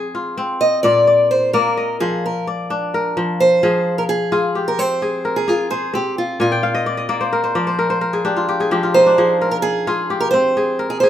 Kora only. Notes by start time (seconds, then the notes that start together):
Already playing: F3 C4 F4 G#4
0.15 F4
0.37 C4
0.84 A#2 D5
1.07 D5
1.54 A#3 D5
1.77 D#5
2.01 F3
2.47 D5
2.70 D4
2.94 A#4
3.17 F3
3.63 F3 G#4
4.32 F4 G#4
4.55 G4
4.78 C4
5.02 G#4
5.25 A#4
5.48 G#4
5.71 C5
5.94 C4
6.40 A#2 G#5
6.52 G5
6.63 F5
6.75 D#5
6.86 D5
6.97 D#5
7.09 A#3 D5
7.21 C5
7.33 A#4
7.44 C5
7.55 F3 D5
7.67 C5
7.79 A#4
7.90 C5
8.01 A#4
8.13 G#4
8.25 D4 G4
8.37 F4
8.49 G4
8.60 G#4
8.71 F3 G4
8.83 F4
8.94 D#4
9.06 D4
9.18 F3 G#4
9.42 A#4
9.87 F4 G#4
10.10 G4
10.34 C4
10.57 G#4
10.79 A#4
11.03 G#4